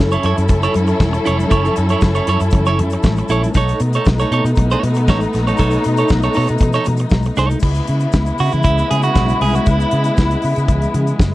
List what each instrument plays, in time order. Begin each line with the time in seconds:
Already playing: string section F#3 C#4 E4 A4
0.00 fingered electric bass F#1, snare
0.11 clean electric guitar E4 A4 C#5, closed hi-hat, shaker
0.23 fingered electric bass F#2, clean electric guitar E4 A4 C#5, closed hi-hat
0.38 fingered electric bass F#2, muted clean electric guitar stroke, closed hi-hat, shaker
0.48 fingered electric bass F#1, muted clean electric guitar stroke, kick, closed hi-hat, muted conga, shaker
0.63 clean electric guitar E4 A4 C#5, closed hi-hat, shaker
0.74 fingered electric bass F#2, muted clean electric guitar stroke, closed hi-hat, muted conga
0.87 muted clean electric guitar stroke, closed hi-hat, shaker
1.00 fingered electric bass E1, muted clean electric guitar stroke, kick, snare, high conga, shaker
1.13 muted clean electric guitar stroke, closed hi-hat, shaker
1.25 fingered electric bass F1, clean electric guitar E4 A4 C#5, closed hi-hat, shaker
1.39 muted clean electric guitar stroke, closed hi-hat, high conga, shaker
1.50 fingered electric bass F#1, clean electric guitar E4 A4 C#5, kick, closed hi-hat, shaker
1.65 closed hi-hat, shaker
1.76 fingered electric bass F#2, muted clean electric guitar stroke, closed hi-hat, shaker
1.89 clean electric guitar E4 A4 C#5, closed hi-hat, shaker
2.01 fingered electric bass F#1, muted clean electric guitar stroke, kick, snare, high conga, shaker
2.15 clean electric guitar E4 A4 C#5, closed hi-hat, shaker
2.27 fingered electric bass F#2, clean electric guitar E4 A4 C#5, closed hi-hat
2.40 fingered electric bass F#2, muted clean electric guitar stroke, closed hi-hat, shaker
2.51 fingered electric bass F#1, muted clean electric guitar stroke, kick, closed hi-hat, muted conga, low conga, shaker
2.66 clean electric guitar E4 A4 C#5, closed hi-hat, shaker
2.79 fingered electric bass F#2, muted clean electric guitar stroke, closed hi-hat, muted conga
2.90 muted clean electric guitar stroke, closed hi-hat, shaker
3.03 fingered electric bass A1, muted clean electric guitar stroke, kick, snare, high conga, shaker
3.16 muted clean electric guitar stroke, closed hi-hat, shaker
3.28 fingered electric bass A#1, clean electric guitar E4 A4 C#5, closed hi-hat, shaker
3.43 muted clean electric guitar stroke, closed hi-hat, high conga, shaker
3.54 fingered electric bass B1, string section A3 B3 D#4, clean electric guitar D#4 A4 C#5, kick, closed hi-hat, muted conga, shaker
3.68 closed hi-hat, shaker
3.80 fingered electric bass B2, muted clean electric guitar stroke, closed hi-hat, shaker
3.93 clean electric guitar D#4 A4 C#5, closed hi-hat, shaker
4.05 fingered electric bass B1, muted clean electric guitar stroke, kick, snare, high conga, shaker
4.19 clean electric guitar D#4 A4 C#5, closed hi-hat, shaker
4.31 fingered electric bass B2, clean electric guitar D#4 A4 C#5, closed hi-hat
4.44 fingered electric bass B2, muted clean electric guitar stroke, closed hi-hat, shaker
4.55 fingered electric bass B1, muted clean electric guitar stroke, kick, closed hi-hat, muted conga, shaker
4.71 clean electric guitar D#4 A4 C#5, closed hi-hat, shaker
4.83 fingered electric bass B2, muted clean electric guitar stroke, closed hi-hat, muted conga
4.94 muted clean electric guitar stroke, closed hi-hat, shaker
5.08 fingered electric bass A1, clean electric guitar D#4 A4 C#5, kick, snare, high conga, shaker
5.21 muted clean electric guitar stroke, closed hi-hat, shaker
5.33 fingered electric bass A#1, muted clean electric guitar stroke, snare, closed hi-hat, shaker
5.47 clean electric guitar D#4 A4 C#5, closed hi-hat, high conga, shaker
5.57 fingered electric bass B1, clean electric guitar D#4 A4 C#5, kick, closed hi-hat, muted conga, shaker
5.71 closed hi-hat, shaker
5.84 fingered electric bass B2, muted clean electric guitar stroke, closed hi-hat, shaker
5.97 clean electric guitar D#4 A4 C#5, closed hi-hat, shaker
6.09 fingered electric bass B1, muted clean electric guitar stroke, kick, snare, high conga, shaker
6.22 clean electric guitar D#4 A4 C#5, closed hi-hat, shaker
6.33 fingered electric bass B2, clean electric guitar D#4 A4 C#5, open hi-hat, shaker
6.47 fingered electric bass B2, muted clean electric guitar stroke, closed hi-hat, shaker
6.58 fingered electric bass B2, muted clean electric guitar stroke, kick, closed hi-hat, muted conga, low conga, shaker
6.73 clean electric guitar D#4 A4 C#5, closed hi-hat, shaker
6.85 fingered electric bass B2, muted clean electric guitar stroke, closed hi-hat, muted conga, low conga, shaker
6.97 muted clean electric guitar stroke, closed hi-hat, shaker
7.10 fingered electric bass B1, kick, snare, high conga, shaker
7.23 muted clean electric guitar stroke, closed hi-hat, shaker
7.36 fingered electric bass C2, clean electric guitar D#4 A4 C#5, snare, closed hi-hat, shaker
7.50 muted clean electric guitar stroke, closed hi-hat, high conga, shaker
7.60 fingered electric bass C#2, string section C#3 G#3 B3 E4, kick, crash, shaker
7.74 closed hi-hat, shaker
7.87 fingered electric bass C#3, closed hi-hat
8.00 closed hi-hat, shaker
8.12 fingered electric bass C#2, kick, snare, high conga, shaker
8.26 closed hi-hat, shaker
8.38 fingered electric bass C#3, clean electric guitar F#4, open hi-hat, shaker
8.52 fingered electric bass C#3, clean electric guitar E4, closed hi-hat, low conga, shaker
8.63 fingered electric bass C#2, clean electric guitar E4, kick, closed hi-hat, muted conga, shaker
8.78 closed hi-hat, shaker
8.91 fingered electric bass C#3, clean electric guitar G#4, closed hi-hat, muted conga
9.02 clean electric guitar F#4, closed hi-hat, shaker
9.15 fingered electric bass B1, kick, snare, high conga, shaker
9.28 closed hi-hat, shaker
9.41 fingered electric bass C2, clean electric guitar G#4, open hi-hat, high conga
9.55 clean electric guitar F#4, closed hi-hat, high conga, shaker
9.66 fingered electric bass C#2, clean electric guitar E4, kick, closed hi-hat, shaker
9.80 closed hi-hat, shaker
9.91 fingered electric bass C#3, closed hi-hat
10.04 closed hi-hat, shaker
10.17 fingered electric bass C#2, kick, snare, high conga, shaker
10.31 closed hi-hat, shaker
10.42 fingered electric bass C#3, open hi-hat, shaker
10.56 fingered electric bass C#3, closed hi-hat, shaker
10.68 fingered electric bass C#2, kick, closed hi-hat, muted conga, low conga, shaker
10.82 closed hi-hat, shaker
10.94 fingered electric bass C#3, closed hi-hat, muted conga, low conga
11.07 closed hi-hat, shaker
11.19 fingered electric bass F#1, kick, snare, high conga, shaker